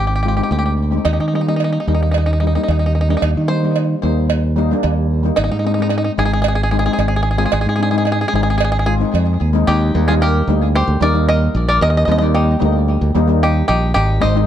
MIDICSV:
0, 0, Header, 1, 5, 480
1, 0, Start_track
1, 0, Key_signature, -3, "major"
1, 0, Tempo, 537634
1, 945, Time_signature, 4, 2, 24, 8
1, 12915, End_track
2, 0, Start_track
2, 0, Title_t, "Five-string banjo"
2, 0, Program_c, 0, 105
2, 63, Note_on_c, 0, 67, 45
2, 118, Note_off_c, 0, 67, 0
2, 139, Note_on_c, 0, 67, 53
2, 190, Note_off_c, 0, 67, 0
2, 202, Note_on_c, 0, 67, 39
2, 241, Note_off_c, 0, 67, 0
2, 252, Note_on_c, 0, 67, 48
2, 313, Note_off_c, 0, 67, 0
2, 328, Note_on_c, 0, 67, 43
2, 377, Note_off_c, 0, 67, 0
2, 387, Note_on_c, 0, 67, 45
2, 447, Note_off_c, 0, 67, 0
2, 465, Note_on_c, 0, 67, 42
2, 512, Note_off_c, 0, 67, 0
2, 523, Note_on_c, 0, 67, 47
2, 576, Note_off_c, 0, 67, 0
2, 586, Note_on_c, 0, 67, 41
2, 647, Note_off_c, 0, 67, 0
2, 935, Note_on_c, 0, 63, 66
2, 999, Note_off_c, 0, 63, 0
2, 1010, Note_on_c, 0, 63, 52
2, 1064, Note_off_c, 0, 63, 0
2, 1074, Note_on_c, 0, 63, 57
2, 1130, Note_off_c, 0, 63, 0
2, 1141, Note_on_c, 0, 63, 47
2, 1197, Note_off_c, 0, 63, 0
2, 1208, Note_on_c, 0, 63, 54
2, 1249, Note_off_c, 0, 63, 0
2, 1260, Note_on_c, 0, 63, 47
2, 1315, Note_off_c, 0, 63, 0
2, 1325, Note_on_c, 0, 63, 56
2, 1385, Note_off_c, 0, 63, 0
2, 1396, Note_on_c, 0, 63, 46
2, 1456, Note_off_c, 0, 63, 0
2, 1467, Note_on_c, 0, 63, 51
2, 1530, Note_off_c, 0, 63, 0
2, 1540, Note_on_c, 0, 63, 43
2, 1597, Note_off_c, 0, 63, 0
2, 1608, Note_on_c, 0, 63, 51
2, 1669, Note_off_c, 0, 63, 0
2, 1679, Note_on_c, 0, 63, 47
2, 1726, Note_off_c, 0, 63, 0
2, 1737, Note_on_c, 0, 63, 50
2, 1798, Note_off_c, 0, 63, 0
2, 1809, Note_on_c, 0, 63, 40
2, 1873, Note_off_c, 0, 63, 0
2, 1888, Note_on_c, 0, 63, 49
2, 1934, Note_off_c, 0, 63, 0
2, 1945, Note_on_c, 0, 63, 42
2, 2008, Note_off_c, 0, 63, 0
2, 2019, Note_on_c, 0, 63, 51
2, 2069, Note_off_c, 0, 63, 0
2, 2080, Note_on_c, 0, 63, 43
2, 2133, Note_off_c, 0, 63, 0
2, 2144, Note_on_c, 0, 63, 50
2, 2195, Note_off_c, 0, 63, 0
2, 2205, Note_on_c, 0, 63, 47
2, 2268, Note_off_c, 0, 63, 0
2, 2279, Note_on_c, 0, 63, 49
2, 2342, Note_off_c, 0, 63, 0
2, 2352, Note_on_c, 0, 63, 45
2, 2407, Note_off_c, 0, 63, 0
2, 2418, Note_on_c, 0, 63, 51
2, 2479, Note_off_c, 0, 63, 0
2, 2493, Note_on_c, 0, 63, 43
2, 2544, Note_off_c, 0, 63, 0
2, 2555, Note_on_c, 0, 63, 55
2, 2614, Note_off_c, 0, 63, 0
2, 2633, Note_on_c, 0, 63, 49
2, 2676, Note_off_c, 0, 63, 0
2, 2687, Note_on_c, 0, 63, 55
2, 2747, Note_off_c, 0, 63, 0
2, 2771, Note_on_c, 0, 63, 50
2, 2819, Note_off_c, 0, 63, 0
2, 2830, Note_on_c, 0, 63, 63
2, 2879, Note_off_c, 0, 63, 0
2, 2890, Note_on_c, 0, 63, 51
2, 2949, Note_off_c, 0, 63, 0
2, 3109, Note_on_c, 0, 72, 91
2, 3558, Note_off_c, 0, 72, 0
2, 4787, Note_on_c, 0, 63, 84
2, 4845, Note_off_c, 0, 63, 0
2, 4856, Note_on_c, 0, 63, 61
2, 4914, Note_off_c, 0, 63, 0
2, 4925, Note_on_c, 0, 63, 62
2, 4982, Note_off_c, 0, 63, 0
2, 4992, Note_on_c, 0, 63, 53
2, 5047, Note_off_c, 0, 63, 0
2, 5058, Note_on_c, 0, 63, 59
2, 5115, Note_off_c, 0, 63, 0
2, 5126, Note_on_c, 0, 63, 52
2, 5186, Note_off_c, 0, 63, 0
2, 5197, Note_on_c, 0, 63, 61
2, 5251, Note_off_c, 0, 63, 0
2, 5262, Note_on_c, 0, 63, 49
2, 5325, Note_off_c, 0, 63, 0
2, 5336, Note_on_c, 0, 63, 62
2, 5385, Note_off_c, 0, 63, 0
2, 5396, Note_on_c, 0, 63, 57
2, 5459, Note_off_c, 0, 63, 0
2, 5525, Note_on_c, 0, 68, 93
2, 5573, Note_off_c, 0, 68, 0
2, 5583, Note_on_c, 0, 68, 73
2, 5646, Note_off_c, 0, 68, 0
2, 5655, Note_on_c, 0, 68, 73
2, 5716, Note_off_c, 0, 68, 0
2, 5730, Note_on_c, 0, 68, 65
2, 5777, Note_off_c, 0, 68, 0
2, 5788, Note_on_c, 0, 68, 70
2, 5840, Note_off_c, 0, 68, 0
2, 5851, Note_on_c, 0, 68, 65
2, 5913, Note_off_c, 0, 68, 0
2, 5923, Note_on_c, 0, 68, 75
2, 5983, Note_off_c, 0, 68, 0
2, 5993, Note_on_c, 0, 68, 63
2, 6051, Note_off_c, 0, 68, 0
2, 6063, Note_on_c, 0, 68, 80
2, 6112, Note_off_c, 0, 68, 0
2, 6123, Note_on_c, 0, 68, 69
2, 6178, Note_off_c, 0, 68, 0
2, 6189, Note_on_c, 0, 68, 65
2, 6240, Note_off_c, 0, 68, 0
2, 6251, Note_on_c, 0, 68, 55
2, 6313, Note_off_c, 0, 68, 0
2, 6323, Note_on_c, 0, 68, 66
2, 6383, Note_off_c, 0, 68, 0
2, 6395, Note_on_c, 0, 68, 63
2, 6442, Note_off_c, 0, 68, 0
2, 6452, Note_on_c, 0, 68, 72
2, 6514, Note_off_c, 0, 68, 0
2, 6525, Note_on_c, 0, 68, 58
2, 6581, Note_off_c, 0, 68, 0
2, 6592, Note_on_c, 0, 68, 69
2, 6647, Note_off_c, 0, 68, 0
2, 6658, Note_on_c, 0, 68, 61
2, 6713, Note_off_c, 0, 68, 0
2, 6724, Note_on_c, 0, 68, 70
2, 6783, Note_off_c, 0, 68, 0
2, 6795, Note_on_c, 0, 68, 59
2, 6853, Note_off_c, 0, 68, 0
2, 6865, Note_on_c, 0, 68, 63
2, 6915, Note_off_c, 0, 68, 0
2, 6926, Note_on_c, 0, 68, 58
2, 6977, Note_off_c, 0, 68, 0
2, 6987, Note_on_c, 0, 68, 67
2, 7048, Note_off_c, 0, 68, 0
2, 7062, Note_on_c, 0, 68, 56
2, 7112, Note_off_c, 0, 68, 0
2, 7123, Note_on_c, 0, 68, 69
2, 7178, Note_off_c, 0, 68, 0
2, 7189, Note_on_c, 0, 68, 58
2, 7238, Note_off_c, 0, 68, 0
2, 7249, Note_on_c, 0, 68, 69
2, 7312, Note_off_c, 0, 68, 0
2, 7331, Note_on_c, 0, 68, 63
2, 7383, Note_off_c, 0, 68, 0
2, 7393, Note_on_c, 0, 68, 76
2, 7448, Note_off_c, 0, 68, 0
2, 7459, Note_on_c, 0, 68, 66
2, 7518, Note_off_c, 0, 68, 0
2, 7527, Note_on_c, 0, 68, 73
2, 7579, Note_off_c, 0, 68, 0
2, 7590, Note_on_c, 0, 68, 67
2, 7647, Note_off_c, 0, 68, 0
2, 7658, Note_on_c, 0, 68, 74
2, 7707, Note_off_c, 0, 68, 0
2, 7718, Note_on_c, 0, 68, 68
2, 7773, Note_off_c, 0, 68, 0
2, 7783, Note_on_c, 0, 68, 81
2, 7838, Note_off_c, 0, 68, 0
2, 7849, Note_on_c, 0, 68, 69
2, 7900, Note_off_c, 0, 68, 0
2, 7911, Note_on_c, 0, 68, 83
2, 7976, Note_off_c, 0, 68, 0
2, 8636, Note_on_c, 0, 67, 88
2, 8644, Note_on_c, 0, 63, 67
2, 8976, Note_off_c, 0, 63, 0
2, 8997, Note_on_c, 0, 68, 81
2, 9005, Note_on_c, 0, 65, 63
2, 9008, Note_off_c, 0, 67, 0
2, 9042, Note_off_c, 0, 68, 0
2, 9050, Note_off_c, 0, 65, 0
2, 9123, Note_on_c, 0, 70, 84
2, 9135, Note_on_c, 0, 67, 66
2, 9573, Note_off_c, 0, 67, 0
2, 9602, Note_on_c, 0, 72, 89
2, 9607, Note_on_c, 0, 67, 72
2, 9614, Note_off_c, 0, 70, 0
2, 9822, Note_off_c, 0, 72, 0
2, 9825, Note_off_c, 0, 67, 0
2, 9842, Note_on_c, 0, 74, 98
2, 9851, Note_on_c, 0, 70, 77
2, 10067, Note_off_c, 0, 70, 0
2, 10072, Note_off_c, 0, 74, 0
2, 10076, Note_on_c, 0, 75, 85
2, 10083, Note_on_c, 0, 70, 76
2, 10410, Note_off_c, 0, 75, 0
2, 10414, Note_off_c, 0, 70, 0
2, 10432, Note_on_c, 0, 74, 87
2, 10441, Note_on_c, 0, 70, 73
2, 10549, Note_off_c, 0, 70, 0
2, 10553, Note_off_c, 0, 74, 0
2, 10556, Note_on_c, 0, 75, 100
2, 10562, Note_on_c, 0, 70, 80
2, 10614, Note_off_c, 0, 75, 0
2, 10620, Note_off_c, 0, 70, 0
2, 10625, Note_on_c, 0, 75, 73
2, 10679, Note_off_c, 0, 75, 0
2, 10689, Note_on_c, 0, 75, 81
2, 10750, Note_off_c, 0, 75, 0
2, 10760, Note_on_c, 0, 75, 72
2, 10806, Note_off_c, 0, 75, 0
2, 10817, Note_on_c, 0, 75, 83
2, 10867, Note_off_c, 0, 75, 0
2, 10878, Note_on_c, 0, 75, 78
2, 10944, Note_off_c, 0, 75, 0
2, 11022, Note_on_c, 0, 67, 82
2, 11027, Note_on_c, 0, 63, 66
2, 11951, Note_off_c, 0, 63, 0
2, 11980, Note_off_c, 0, 67, 0
2, 11991, Note_on_c, 0, 67, 86
2, 11995, Note_on_c, 0, 63, 70
2, 12202, Note_off_c, 0, 67, 0
2, 12211, Note_off_c, 0, 63, 0
2, 12213, Note_on_c, 0, 67, 92
2, 12221, Note_on_c, 0, 63, 73
2, 12438, Note_off_c, 0, 67, 0
2, 12441, Note_off_c, 0, 63, 0
2, 12448, Note_on_c, 0, 67, 94
2, 12452, Note_on_c, 0, 63, 77
2, 12682, Note_off_c, 0, 63, 0
2, 12692, Note_on_c, 0, 75, 99
2, 12693, Note_on_c, 0, 72, 77
2, 12705, Note_off_c, 0, 67, 0
2, 12915, Note_off_c, 0, 72, 0
2, 12915, Note_off_c, 0, 75, 0
2, 12915, End_track
3, 0, Start_track
3, 0, Title_t, "Steel pan"
3, 0, Program_c, 1, 114
3, 221, Note_on_c, 1, 56, 61
3, 228, Note_on_c, 1, 60, 52
3, 232, Note_on_c, 1, 65, 67
3, 294, Note_off_c, 1, 56, 0
3, 297, Note_off_c, 1, 60, 0
3, 299, Note_off_c, 1, 65, 0
3, 328, Note_on_c, 1, 56, 61
3, 334, Note_on_c, 1, 60, 53
3, 344, Note_on_c, 1, 63, 66
3, 625, Note_off_c, 1, 56, 0
3, 628, Note_off_c, 1, 60, 0
3, 632, Note_off_c, 1, 63, 0
3, 814, Note_on_c, 1, 56, 61
3, 820, Note_on_c, 1, 60, 58
3, 832, Note_on_c, 1, 63, 65
3, 940, Note_off_c, 1, 56, 0
3, 942, Note_off_c, 1, 60, 0
3, 949, Note_off_c, 1, 63, 0
3, 1191, Note_on_c, 1, 55, 61
3, 1194, Note_on_c, 1, 58, 55
3, 1202, Note_on_c, 1, 63, 63
3, 1261, Note_off_c, 1, 55, 0
3, 1262, Note_off_c, 1, 58, 0
3, 1266, Note_off_c, 1, 63, 0
3, 1308, Note_on_c, 1, 55, 64
3, 1322, Note_on_c, 1, 58, 55
3, 1325, Note_on_c, 1, 63, 68
3, 1524, Note_off_c, 1, 55, 0
3, 1531, Note_off_c, 1, 58, 0
3, 1532, Note_off_c, 1, 63, 0
3, 1674, Note_on_c, 1, 55, 62
3, 1683, Note_on_c, 1, 58, 61
3, 1686, Note_on_c, 1, 63, 74
3, 1960, Note_off_c, 1, 55, 0
3, 1964, Note_off_c, 1, 58, 0
3, 1965, Note_off_c, 1, 63, 0
3, 2153, Note_on_c, 1, 55, 58
3, 2167, Note_on_c, 1, 58, 54
3, 2173, Note_on_c, 1, 63, 68
3, 2223, Note_off_c, 1, 55, 0
3, 2230, Note_off_c, 1, 58, 0
3, 2233, Note_off_c, 1, 63, 0
3, 2284, Note_on_c, 1, 55, 63
3, 2289, Note_on_c, 1, 58, 58
3, 2297, Note_on_c, 1, 63, 72
3, 2566, Note_off_c, 1, 55, 0
3, 2568, Note_off_c, 1, 58, 0
3, 2572, Note_off_c, 1, 63, 0
3, 2757, Note_on_c, 1, 55, 65
3, 2764, Note_on_c, 1, 58, 62
3, 2766, Note_on_c, 1, 62, 72
3, 2971, Note_off_c, 1, 55, 0
3, 2974, Note_off_c, 1, 58, 0
3, 2975, Note_off_c, 1, 62, 0
3, 3114, Note_on_c, 1, 55, 63
3, 3126, Note_on_c, 1, 58, 54
3, 3132, Note_on_c, 1, 63, 68
3, 3185, Note_off_c, 1, 55, 0
3, 3191, Note_off_c, 1, 58, 0
3, 3194, Note_off_c, 1, 63, 0
3, 3241, Note_on_c, 1, 55, 62
3, 3250, Note_on_c, 1, 58, 59
3, 3257, Note_on_c, 1, 63, 67
3, 3453, Note_off_c, 1, 55, 0
3, 3458, Note_off_c, 1, 58, 0
3, 3461, Note_off_c, 1, 63, 0
3, 3598, Note_on_c, 1, 55, 65
3, 3606, Note_on_c, 1, 58, 64
3, 3614, Note_on_c, 1, 63, 71
3, 3885, Note_off_c, 1, 55, 0
3, 3889, Note_off_c, 1, 58, 0
3, 3892, Note_off_c, 1, 63, 0
3, 4072, Note_on_c, 1, 55, 71
3, 4082, Note_on_c, 1, 58, 71
3, 4090, Note_on_c, 1, 63, 88
3, 4146, Note_off_c, 1, 55, 0
3, 4150, Note_off_c, 1, 58, 0
3, 4154, Note_off_c, 1, 63, 0
3, 4207, Note_on_c, 1, 55, 78
3, 4210, Note_on_c, 1, 58, 73
3, 4222, Note_on_c, 1, 62, 87
3, 4489, Note_off_c, 1, 55, 0
3, 4491, Note_off_c, 1, 58, 0
3, 4497, Note_off_c, 1, 62, 0
3, 4671, Note_on_c, 1, 55, 68
3, 4681, Note_on_c, 1, 58, 65
3, 4693, Note_on_c, 1, 63, 75
3, 4793, Note_off_c, 1, 55, 0
3, 4799, Note_off_c, 1, 58, 0
3, 4805, Note_off_c, 1, 63, 0
3, 5040, Note_on_c, 1, 56, 61
3, 5049, Note_on_c, 1, 60, 59
3, 5060, Note_on_c, 1, 63, 70
3, 5111, Note_off_c, 1, 56, 0
3, 5115, Note_off_c, 1, 60, 0
3, 5121, Note_off_c, 1, 63, 0
3, 5166, Note_on_c, 1, 60, 64
3, 5168, Note_on_c, 1, 56, 66
3, 5179, Note_on_c, 1, 63, 68
3, 5378, Note_off_c, 1, 60, 0
3, 5379, Note_off_c, 1, 56, 0
3, 5385, Note_off_c, 1, 63, 0
3, 5513, Note_on_c, 1, 56, 69
3, 5522, Note_on_c, 1, 60, 62
3, 5531, Note_on_c, 1, 63, 76
3, 5804, Note_off_c, 1, 56, 0
3, 5808, Note_off_c, 1, 60, 0
3, 5813, Note_off_c, 1, 63, 0
3, 5999, Note_on_c, 1, 56, 65
3, 6001, Note_on_c, 1, 60, 59
3, 6008, Note_on_c, 1, 63, 72
3, 6071, Note_off_c, 1, 56, 0
3, 6072, Note_off_c, 1, 60, 0
3, 6076, Note_off_c, 1, 63, 0
3, 6128, Note_on_c, 1, 56, 67
3, 6132, Note_on_c, 1, 60, 63
3, 6137, Note_on_c, 1, 63, 76
3, 6412, Note_off_c, 1, 56, 0
3, 6414, Note_off_c, 1, 60, 0
3, 6416, Note_off_c, 1, 63, 0
3, 6586, Note_on_c, 1, 56, 68
3, 6599, Note_on_c, 1, 60, 64
3, 6603, Note_on_c, 1, 65, 76
3, 6809, Note_off_c, 1, 56, 0
3, 6816, Note_off_c, 1, 60, 0
3, 6818, Note_off_c, 1, 65, 0
3, 6948, Note_on_c, 1, 56, 60
3, 6955, Note_on_c, 1, 60, 59
3, 6962, Note_on_c, 1, 62, 70
3, 7026, Note_off_c, 1, 56, 0
3, 7029, Note_off_c, 1, 60, 0
3, 7033, Note_off_c, 1, 62, 0
3, 7072, Note_on_c, 1, 56, 72
3, 7079, Note_on_c, 1, 60, 59
3, 7092, Note_on_c, 1, 63, 76
3, 7292, Note_off_c, 1, 56, 0
3, 7296, Note_off_c, 1, 60, 0
3, 7302, Note_off_c, 1, 63, 0
3, 7433, Note_on_c, 1, 56, 74
3, 7441, Note_on_c, 1, 60, 62
3, 7455, Note_on_c, 1, 63, 75
3, 7725, Note_off_c, 1, 56, 0
3, 7729, Note_off_c, 1, 60, 0
3, 7736, Note_off_c, 1, 63, 0
3, 7916, Note_on_c, 1, 56, 63
3, 7916, Note_on_c, 1, 60, 62
3, 7924, Note_on_c, 1, 65, 76
3, 7990, Note_off_c, 1, 56, 0
3, 7990, Note_off_c, 1, 60, 0
3, 7994, Note_off_c, 1, 65, 0
3, 8032, Note_on_c, 1, 56, 67
3, 8038, Note_on_c, 1, 60, 67
3, 8048, Note_on_c, 1, 63, 80
3, 8324, Note_off_c, 1, 56, 0
3, 8327, Note_off_c, 1, 60, 0
3, 8332, Note_off_c, 1, 63, 0
3, 8509, Note_on_c, 1, 56, 88
3, 8522, Note_on_c, 1, 60, 72
3, 8526, Note_on_c, 1, 63, 91
3, 8634, Note_off_c, 1, 56, 0
3, 8641, Note_off_c, 1, 60, 0
3, 8643, Note_off_c, 1, 63, 0
3, 8877, Note_on_c, 1, 55, 71
3, 8883, Note_on_c, 1, 58, 66
3, 8891, Note_on_c, 1, 63, 75
3, 8950, Note_off_c, 1, 55, 0
3, 8953, Note_off_c, 1, 58, 0
3, 8957, Note_off_c, 1, 63, 0
3, 9013, Note_on_c, 1, 55, 77
3, 9015, Note_on_c, 1, 58, 71
3, 9022, Note_on_c, 1, 63, 85
3, 9222, Note_off_c, 1, 55, 0
3, 9222, Note_off_c, 1, 58, 0
3, 9226, Note_off_c, 1, 63, 0
3, 9362, Note_on_c, 1, 55, 77
3, 9367, Note_on_c, 1, 58, 75
3, 9375, Note_on_c, 1, 63, 89
3, 9647, Note_off_c, 1, 55, 0
3, 9650, Note_off_c, 1, 58, 0
3, 9654, Note_off_c, 1, 63, 0
3, 9824, Note_on_c, 1, 55, 78
3, 9827, Note_on_c, 1, 58, 69
3, 9842, Note_on_c, 1, 63, 81
3, 9902, Note_off_c, 1, 55, 0
3, 9904, Note_off_c, 1, 58, 0
3, 9912, Note_off_c, 1, 63, 0
3, 9941, Note_on_c, 1, 55, 80
3, 9948, Note_on_c, 1, 58, 67
3, 9955, Note_on_c, 1, 63, 86
3, 10451, Note_off_c, 1, 55, 0
3, 10455, Note_off_c, 1, 58, 0
3, 10458, Note_off_c, 1, 63, 0
3, 10778, Note_on_c, 1, 55, 73
3, 10787, Note_on_c, 1, 58, 72
3, 10797, Note_on_c, 1, 60, 80
3, 10858, Note_off_c, 1, 55, 0
3, 10862, Note_off_c, 1, 58, 0
3, 10867, Note_off_c, 1, 60, 0
3, 10890, Note_on_c, 1, 55, 74
3, 10898, Note_on_c, 1, 58, 72
3, 10907, Note_on_c, 1, 63, 88
3, 11117, Note_off_c, 1, 55, 0
3, 11121, Note_off_c, 1, 58, 0
3, 11126, Note_off_c, 1, 63, 0
3, 11247, Note_on_c, 1, 55, 82
3, 11251, Note_on_c, 1, 58, 75
3, 11263, Note_on_c, 1, 63, 87
3, 11547, Note_off_c, 1, 55, 0
3, 11549, Note_off_c, 1, 58, 0
3, 11555, Note_off_c, 1, 63, 0
3, 11737, Note_on_c, 1, 55, 91
3, 11744, Note_on_c, 1, 58, 84
3, 11750, Note_on_c, 1, 63, 101
3, 11816, Note_off_c, 1, 55, 0
3, 11819, Note_off_c, 1, 58, 0
3, 11822, Note_off_c, 1, 63, 0
3, 11852, Note_on_c, 1, 55, 83
3, 11859, Note_on_c, 1, 58, 76
3, 11869, Note_on_c, 1, 63, 86
3, 12363, Note_off_c, 1, 55, 0
3, 12367, Note_off_c, 1, 58, 0
3, 12372, Note_off_c, 1, 63, 0
3, 12680, Note_on_c, 1, 56, 73
3, 12686, Note_on_c, 1, 60, 71
3, 12697, Note_on_c, 1, 63, 81
3, 12766, Note_off_c, 1, 56, 0
3, 12768, Note_off_c, 1, 60, 0
3, 12774, Note_off_c, 1, 63, 0
3, 12813, Note_on_c, 1, 56, 81
3, 12822, Note_on_c, 1, 60, 72
3, 12827, Note_on_c, 1, 63, 93
3, 12915, Note_off_c, 1, 56, 0
3, 12915, Note_off_c, 1, 60, 0
3, 12915, Note_off_c, 1, 63, 0
3, 12915, End_track
4, 0, Start_track
4, 0, Title_t, "Fingered electric bass"
4, 0, Program_c, 2, 33
4, 0, Note_on_c, 2, 32, 69
4, 355, Note_off_c, 2, 32, 0
4, 453, Note_on_c, 2, 38, 84
4, 869, Note_off_c, 2, 38, 0
4, 939, Note_on_c, 2, 39, 86
4, 1044, Note_off_c, 2, 39, 0
4, 1065, Note_on_c, 2, 51, 73
4, 1580, Note_off_c, 2, 51, 0
4, 1673, Note_on_c, 2, 39, 75
4, 2288, Note_off_c, 2, 39, 0
4, 2396, Note_on_c, 2, 39, 81
4, 2805, Note_off_c, 2, 39, 0
4, 2876, Note_on_c, 2, 39, 86
4, 2977, Note_off_c, 2, 39, 0
4, 3010, Note_on_c, 2, 51, 79
4, 3517, Note_off_c, 2, 51, 0
4, 3600, Note_on_c, 2, 39, 73
4, 4215, Note_off_c, 2, 39, 0
4, 4321, Note_on_c, 2, 39, 90
4, 4730, Note_off_c, 2, 39, 0
4, 4803, Note_on_c, 2, 32, 86
4, 4903, Note_off_c, 2, 32, 0
4, 4921, Note_on_c, 2, 44, 77
4, 5433, Note_off_c, 2, 44, 0
4, 5518, Note_on_c, 2, 32, 80
4, 6135, Note_off_c, 2, 32, 0
4, 6235, Note_on_c, 2, 32, 94
4, 6648, Note_off_c, 2, 32, 0
4, 6719, Note_on_c, 2, 32, 90
4, 6822, Note_off_c, 2, 32, 0
4, 6840, Note_on_c, 2, 44, 77
4, 7354, Note_off_c, 2, 44, 0
4, 7441, Note_on_c, 2, 32, 75
4, 8057, Note_off_c, 2, 32, 0
4, 8157, Note_on_c, 2, 41, 78
4, 8374, Note_off_c, 2, 41, 0
4, 8400, Note_on_c, 2, 39, 77
4, 8616, Note_off_c, 2, 39, 0
4, 8640, Note_on_c, 2, 39, 110
4, 8845, Note_off_c, 2, 39, 0
4, 8881, Note_on_c, 2, 39, 105
4, 9290, Note_off_c, 2, 39, 0
4, 9352, Note_on_c, 2, 38, 86
4, 9662, Note_off_c, 2, 38, 0
4, 9709, Note_on_c, 2, 38, 86
4, 9815, Note_off_c, 2, 38, 0
4, 9828, Note_on_c, 2, 39, 90
4, 10241, Note_off_c, 2, 39, 0
4, 10308, Note_on_c, 2, 34, 98
4, 10516, Note_off_c, 2, 34, 0
4, 10546, Note_on_c, 2, 39, 115
4, 10754, Note_off_c, 2, 39, 0
4, 10782, Note_on_c, 2, 39, 102
4, 11197, Note_off_c, 2, 39, 0
4, 11265, Note_on_c, 2, 38, 94
4, 11575, Note_off_c, 2, 38, 0
4, 11618, Note_on_c, 2, 38, 90
4, 11726, Note_off_c, 2, 38, 0
4, 11741, Note_on_c, 2, 39, 88
4, 12154, Note_off_c, 2, 39, 0
4, 12222, Note_on_c, 2, 34, 96
4, 12430, Note_off_c, 2, 34, 0
4, 12464, Note_on_c, 2, 32, 119
4, 12670, Note_off_c, 2, 32, 0
4, 12703, Note_on_c, 2, 32, 109
4, 12915, Note_off_c, 2, 32, 0
4, 12915, End_track
5, 0, Start_track
5, 0, Title_t, "Drums"
5, 940, Note_on_c, 9, 56, 78
5, 1029, Note_off_c, 9, 56, 0
5, 1430, Note_on_c, 9, 56, 57
5, 1519, Note_off_c, 9, 56, 0
5, 1912, Note_on_c, 9, 56, 69
5, 2002, Note_off_c, 9, 56, 0
5, 2397, Note_on_c, 9, 56, 61
5, 2486, Note_off_c, 9, 56, 0
5, 2877, Note_on_c, 9, 56, 82
5, 2967, Note_off_c, 9, 56, 0
5, 3353, Note_on_c, 9, 56, 62
5, 3443, Note_off_c, 9, 56, 0
5, 3836, Note_on_c, 9, 56, 80
5, 3926, Note_off_c, 9, 56, 0
5, 4313, Note_on_c, 9, 56, 65
5, 4402, Note_off_c, 9, 56, 0
5, 4794, Note_on_c, 9, 56, 82
5, 4883, Note_off_c, 9, 56, 0
5, 5270, Note_on_c, 9, 56, 66
5, 5360, Note_off_c, 9, 56, 0
5, 5751, Note_on_c, 9, 56, 83
5, 5840, Note_off_c, 9, 56, 0
5, 6238, Note_on_c, 9, 56, 69
5, 6327, Note_off_c, 9, 56, 0
5, 6713, Note_on_c, 9, 56, 85
5, 6802, Note_off_c, 9, 56, 0
5, 7203, Note_on_c, 9, 56, 65
5, 7292, Note_off_c, 9, 56, 0
5, 7683, Note_on_c, 9, 56, 84
5, 7772, Note_off_c, 9, 56, 0
5, 8167, Note_on_c, 9, 56, 64
5, 8256, Note_off_c, 9, 56, 0
5, 12915, End_track
0, 0, End_of_file